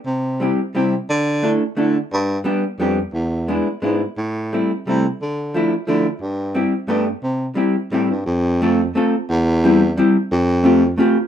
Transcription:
X:1
M:3/4
L:1/8
Q:"Swing" 1/4=176
K:C
V:1 name="Hollow-body jazz guitar"
z2 [G,CEG] z [G,CEG] z | z2 [A,DEA] z [A,DEA] z | z2 [G,B,DG] z [G,B,DG] z | z2 [^G,B,DE] z [G,B,DE] z |
z2 [G,A,CE] z [G,A,CE] z | z2 [F,A,DE] z [F,A,DE] z | z2 [G,CEG] z [A,B,DG] z | z2 [G,CEG] z [G,CEG] z |
[K:F] z2 [A,CFA] z [A,CFA] z | z2 [G,CEG] z [G,CEG] z | z2 [A,CFG] z [A,CFG] z |]
V:2 name="Baritone saxophone" clef=bass
C,4 C,2 | D,4 D,2 | G,,2 z2 F,,2 | E,,4 ^G,,2 |
A,,4 C,2 | D,4 D,2 | G,,4 G,,2 | C,2 z2 A,, G,, |
[K:F] F,,6 | E,,6 | F,,6 |]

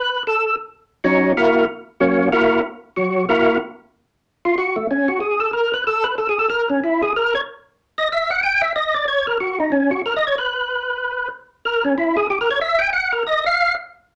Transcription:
X:1
M:4/4
L:1/8
Q:"Swing" 1/4=186
K:F#mix
V:1 name="Tonewheel organ"
B =A2 z3 [F,CDF]2 | [A,EFA]2 z2 [F,A,CF]2 [A,EFA]2 | z2 [F,F]2 [A,EFA]2 z2 | z3 ^E F =A, C F |
G =A ^A B =A B (3A G A | A C E G A c z2 | z d e f =g e d =d | c A F D C F (3A d c |
B6 z2 | A C E G (3=G A c e =g | f A d ^e2 z3 |]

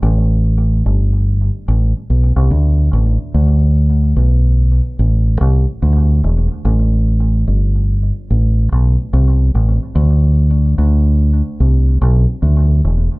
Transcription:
X:1
M:4/4
L:1/16
Q:"Swing 16ths" 1/4=73
K:Ddor
V:1 name="Fingered electric bass" clef=bass
A,,,4 G,,,3 z A,,, z B,,, C,, D,,2 A,,, z | D,,4 B,,,3 z A,,,2 C,, z D,,2 E,,, z | A,,,4 G,,,3 z A,,,2 B,,, z C,,2 A,,, z | D,,4 D,,3 z C,,2 B,,, z D,,2 E,,, z |]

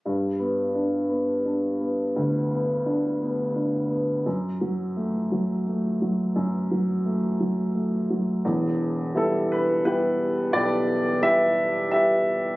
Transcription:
X:1
M:3/4
L:1/16
Q:1/4=86
K:Em
V:1 name="Upright piano"
z12 | z12 | z12 | z12 |
z4 A2 B2 B4 | d4 e4 e3 z |]
V:2 name="Upright piano"
G,,2 B,2 D2 B,2 D2 B,2 | D,,2 B,2 D2 B,2 D2 B,2 | F,,2 F,2 A,2 F,2 A,2 F,2 | F,,2 F,2 A,2 F,2 A,2 F,2 |
[E,,,E,,]4 [G,B,E]4 [G,B,EG]4 | [B,,,GB]4 [G,B,EGB]4 [G,B,EGB]4 |]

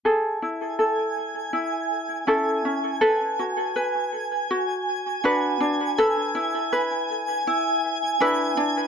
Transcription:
X:1
M:4/4
L:1/8
Q:"Swing 16ths" 1/4=81
K:A
V:1 name="Synth texture"
g8- | g8- | g8 |]
V:2 name="Ukulele"
[GA] E A2 E2 [CEA] C | [AB] F B2 F2 [DFB] D | [AB] E B2 E2 [DEB] D |]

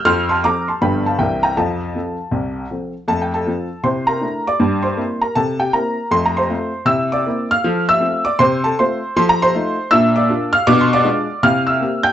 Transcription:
X:1
M:4/4
L:1/8
Q:"Swing" 1/4=158
K:F
V:1 name="Upright piano"
[c'f'] [ac'] [bd'] [ac'] [g=b] [fa] [eg] [g_b] | [fa]6 z2 | (3a g [Aa]- [Aa]2 [cc'] [Bb]2 [dd']- | [dd'] [cc']2 [Bb] [Aa] [Gg] [Bb]2 |
(3c' b [cc']- [cc']2 [ee'] [dd']2 [ff']- | [ff'] [ee']2 [dd'] [cc'] [Aa] [cc']2 | (3c' b [cc']- [cc']2 [ee'] [dd']2 [ff'] | (3d' c' [dd']- [dd']2 [ff'] [ee']2 [gg'] |]
V:2 name="Upright piano"
[F,,F,]2 [F,CA]2 [G,,,G,,F,=B,=B]2 [C,,C,E,C_B]2 | [F,,F,]2 [F,CA]2 [C,,C,]2 [F,CA]2 | [F,,A,]2 [F,CF]2 [C,E]2 [A,DE]2 | G,,2 [B,CE]2 C,2 [B,CE]2 |
[F,,A,]2 [A,CF]2 [C,E]2 [B,CE]2 | [F,A]2 [A,CF]2 C,2 [A,CF]2 | [F,A]2 [A,_EF]2 [B,,D]2 [B,DF]2 | [=B,,D]2 [^G,DF]2 [C,E]2 [_B,C=G]2 |]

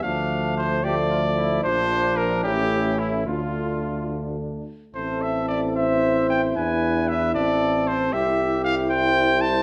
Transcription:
X:1
M:6/8
L:1/16
Q:3/8=75
K:Dm
V:1 name="Trumpet"
f4 c2 d6 | c4 B2 G4 E2 | F6 z6 | [K:Am] c2 e2 d2 e4 g2 |
^g4 e2 d4 c2 | e4 f2 g4 a2 |]
V:2 name="Flugelhorn"
D6 G2 F2 E2 | D6 E6 | F8- F z3 | [K:Am] A6 c6 |
B6 A6 | G6 c6 |]
V:3 name="French horn"
A,6 A,6 | D6 ^C6 | D8- D2 z2 | [K:Am] E12- |
E12 | E12 |]
V:4 name="Euphonium"
F,6 F,6 | F,6 A,6 | A,8- A,2 z2 | [K:Am] C12 |
D6 C6 | G,12 |]
V:5 name="Bass trombone" clef=bass
D,,12 | B,,,6 A,,,6 | D,,8- D,,2 z2 | [K:Am] A,,,12 |
E,,6 A,,,6 | C,,12 |]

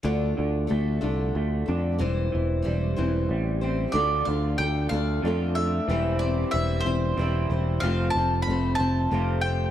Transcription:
X:1
M:6/8
L:1/8
Q:3/8=62
K:Dm
V:1 name="Mandolin"
z6 | z6 | d f g f2 e- | e d e c2 z |
f a =b a2 g |]
V:2 name="Steel-string acoustic guitar"
[D,A,DFA]2 [A,DFA] [D,A,DFA]2 [DFA] | [E,G,CEc]2 [G,CEc] [E,G,CEc]2 [CEc] | [D,A,DFA] [DFA] [A,DFA] [D,A,DFA] [A,DFA] [DFA] | [E,G,CEc] [CEc] [G,CEc] [E,G,CEc] [G,CEc] [CEc] |
[F,A,CFc] [CFc] [A,CFc] [F,A,CFc] [A,CFc] [CFc] |]
V:3 name="Clean electric guitar" clef=bass
D, D, A, D, A, D | E, E, G, E, G, C | [D,A,DF]4 [D,A,DF]2 | [E,G,CE]4 [E,G,CE]2 |
[F,,C,F,A,CF]4 [F,,C,F,A,CF]2 |]
V:4 name="Picked electric bass" clef=bass
D,, D,, D,, C,, D,, F,, | E,,, E,,, E,,, E,,, A,,,2 | D,, D,, D,, D,, F,,2 | E,,,2 E,,, E,,, E,,, E,,, |
F,,, F,,, F,,, F,,, F,,,2 |]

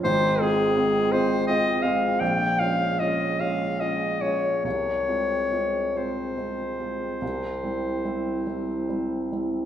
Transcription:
X:1
M:12/8
L:1/8
Q:3/8=49
K:Cphr
V:1 name="Clarinet"
c A2 c e f g f e f e d | d3 c8 z |]
V:2 name="Grand piano"
[A,,,A,,] [A,CF] [A,CF] [A,CF] [A,CF] [A,CF] B,,, [A,DF] [A,DF] [A,DF] [A,DF] [A,DF] | C,, [A,CF] [A,CF] [A,CF] [A,CF] [A,CF] C,, [G,C=E] [G,CE] [G,CE] [G,CE] [G,CE] |]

